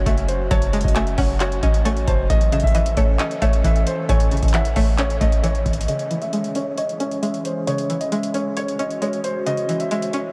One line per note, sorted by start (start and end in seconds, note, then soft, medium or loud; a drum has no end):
0.00 2.26 F#3 medium
0.00 0.96 C#4 medium
0.00 2.26 C#4 medium
0.00 0.73 F#4 loud
0.00 2.26 F#4 medium
0.00 0.47 F#5 medium
0.06 0.49 F#1 loud
0.06 0.94 A3 medium
0.06 0.24 E5 medium
0.06 kick loud
0.06 closed hi-hat medium
0.18 closed hi-hat medium
0.28 0.46 C5 medium
0.28 closed hi-hat medium
0.51 0.83 F#1 loud
0.51 1.63 F#3 loud
0.51 0.82 C#5 loud
0.51 0.93 A5 loud
0.51 kick loud
0.51 closed hi-hat medium
0.62 closed hi-hat medium
0.73 1.85 G#3 medium
0.73 closed hi-hat medium
0.81 1.17 F#1 loud
0.81 0.93 D#5 medium
0.81 kick loud
0.81 closed hi-hat medium
0.88 closed hi-hat medium
0.95 1.84 A3 loud
0.95 1.13 E5 medium
0.95 1.17 G#5 medium
0.95 clap loud
0.95 closed hi-hat medium
1.07 closed hi-hat medium
1.18 1.61 F#1 loud
1.18 1.62 C#4 medium
1.18 1.35 C#5 medium
1.18 1.39 F#5 medium
1.18 kick loud
1.18 open hi-hat medium
1.40 2.30 F#4 loud
1.40 1.58 C#5 medium
1.40 clap loud
1.40 closed hi-hat medium
1.52 closed hi-hat medium
1.63 2.06 A1 loud
1.63 2.30 C#4 medium
1.63 1.80 D#5 medium
1.63 kick loud
1.63 closed hi-hat medium
1.74 closed hi-hat medium
1.85 2.30 A3 medium
1.85 2.03 C#5 medium
1.85 2.07 G#5 medium
1.85 closed hi-hat medium
1.97 closed hi-hat medium
2.07 2.29 F#1 loud
2.07 2.25 C5 medium
2.07 2.29 A5 medium
2.07 kick loud
2.07 closed hi-hat medium
2.30 2.62 A1 loud
2.30 3.42 A2 medium
2.30 5.85 E3 medium
2.30 5.85 C#4 medium
2.30 5.85 A4 medium
2.30 2.61 D#5 loud
2.30 kick loud
2.30 closed hi-hat medium
2.41 closed hi-hat medium
2.52 3.64 C#3 medium
2.52 2.74 E5 medium
2.52 closed hi-hat medium
2.60 2.96 A1 loud
2.60 2.72 E5 medium
2.60 kick loud
2.60 closed hi-hat medium
2.67 closed hi-hat medium
2.75 3.63 E3 medium
2.75 2.96 D#5 medium
2.75 2.92 E5 medium
2.75 closed hi-hat medium
2.86 closed hi-hat medium
2.97 3.19 A1 loud
2.97 3.41 A3 medium
2.97 3.39 C#5 medium
2.97 3.15 C#5 medium
2.97 kick loud
2.97 closed hi-hat medium
3.19 4.31 C#4 loud
3.19 3.37 D#5 medium
3.19 clap loud
3.19 closed hi-hat medium
3.31 closed hi-hat medium
3.42 3.63 A1 loud
3.42 4.54 A3 medium
3.42 3.60 C#5 medium
3.42 4.05 E5 medium
3.42 kick loud
3.42 closed hi-hat medium
3.53 closed hi-hat medium
3.64 3.86 A1 loud
3.64 4.53 E3 medium
3.64 3.82 E5 medium
3.64 kick loud
3.64 closed hi-hat medium
3.76 closed hi-hat medium
3.87 4.04 C5 medium
3.87 closed hi-hat medium
4.09 4.41 A1 loud
4.09 5.21 A2 loud
4.09 4.41 C#5 loud
4.09 4.51 G#5 loud
4.09 kick loud
4.09 closed hi-hat medium
4.20 closed hi-hat medium
4.31 5.43 C#3 medium
4.31 closed hi-hat soft
4.37 closed hi-hat medium
4.43 4.75 A1 loud
4.43 4.51 D#5 medium
4.43 kick loud
4.43 closed hi-hat medium
4.48 closed hi-hat medium
4.54 5.42 E3 medium
4.54 4.71 E5 medium
4.54 4.75 F#5 medium
4.54 clap loud
4.54 closed hi-hat medium
4.65 closed hi-hat medium
4.76 5.19 A1 loud
4.76 5.20 A3 medium
4.76 4.94 C#5 medium
4.76 4.97 E5 medium
4.76 kick loud
4.76 open hi-hat medium
4.98 5.88 C#4 loud
4.98 5.16 C#5 medium
4.98 clap loud
4.98 closed hi-hat medium
5.10 closed hi-hat medium
5.21 5.64 A1 loud
5.21 5.88 A3 medium
5.21 5.38 D#5 loud
5.21 kick loud
5.21 closed hi-hat medium
5.32 closed hi-hat medium
5.43 5.88 E3 medium
5.43 5.61 C#5 medium
5.43 closed hi-hat medium
5.55 closed hi-hat medium
5.66 5.87 G#1 loud
5.66 kick loud
5.66 closed hi-hat medium
5.73 closed hi-hat medium
5.81 closed hi-hat medium
5.88 7.00 C#3 medium
5.88 10.32 E3 medium
5.88 10.32 G#3 medium
5.88 10.32 C#4 medium
5.88 8.54 G#4 medium
5.88 6.20 D#5 loud
5.88 closed hi-hat medium
5.99 closed hi-hat soft
6.11 7.23 E3 medium
6.11 closed hi-hat medium
6.22 6.30 E5 medium
6.22 closed hi-hat soft
6.33 7.21 G#3 medium
6.33 6.50 E5 medium
6.33 closed hi-hat medium
6.44 closed hi-hat medium
6.55 6.99 C#4 medium
6.55 6.73 C#5 medium
6.55 closed hi-hat medium
6.78 7.90 C#5 medium
6.78 6.95 D#5 medium
6.78 closed hi-hat medium
6.89 closed hi-hat medium
7.00 8.12 C#4 medium
7.00 7.18 C#5 medium
7.00 closed hi-hat medium
7.11 closed hi-hat soft
7.22 8.11 G#3 medium
7.22 7.40 E5 medium
7.22 closed hi-hat medium
7.34 closed hi-hat soft
7.45 7.63 C5 medium
7.45 closed hi-hat medium
7.67 8.79 C#3 medium
7.67 7.99 C#5 loud
7.67 closed hi-hat medium
7.78 closed hi-hat soft
7.90 9.02 E3 medium
7.90 closed hi-hat medium
8.01 8.09 D#5 medium
8.01 closed hi-hat soft
8.12 9.00 G#3 medium
8.12 8.30 E5 medium
8.12 closed hi-hat medium
8.23 closed hi-hat medium
8.34 8.78 C#4 medium
8.34 8.52 C#5 medium
8.34 closed hi-hat medium
8.57 10.32 F#4 medium
8.57 9.69 C#5 loud
8.57 8.75 C#5 medium
8.57 closed hi-hat medium
8.68 closed hi-hat medium
8.79 9.91 C#4 medium
8.79 8.97 D#5 medium
8.79 closed hi-hat medium
8.91 closed hi-hat soft
9.02 9.90 G#3 medium
9.02 9.19 C#5 medium
9.02 closed hi-hat medium
9.13 closed hi-hat soft
9.24 9.42 C5 medium
9.24 closed hi-hat medium
9.46 10.32 C#3 medium
9.46 9.78 D#5 loud
9.46 closed hi-hat medium
9.57 closed hi-hat soft
9.69 10.32 E3 medium
9.69 closed hi-hat medium
9.80 9.89 E5 medium
9.80 closed hi-hat soft
9.91 10.32 G#3 medium
9.91 10.09 E5 medium
9.91 closed hi-hat medium
10.02 closed hi-hat medium
10.13 10.32 C#4 medium
10.13 10.31 C#5 medium
10.13 closed hi-hat medium